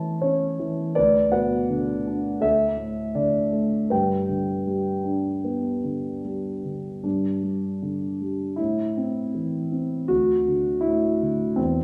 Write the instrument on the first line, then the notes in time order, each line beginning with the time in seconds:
grand piano
Already playing: A2 E3 C#4 E4 A4 C#5 A5
0.22 C#4 C#5
0.59 E3
0.95 D2 B4 D5
1.32 B2 B4 F#5
1.70 D3
2.07 D4
2.41 D2 A4 E5
2.77 A2
3.15 D3 D5
3.52 A3
3.90 G2 B4 G5
4.29 D3
4.67 G3
5.04 D4
5.44 B3
5.84 D3
6.25 G3
6.65 D3
7.03 G2 D4
7.43 G3
7.82 D3
8.21 G3
8.56 A2 E4
8.97 C4
9.34 E3
9.72 C4
10.08 D2 F#4
10.48 D3
10.81 E4
10.85 A2
11.22 D3
11.56 E2 C4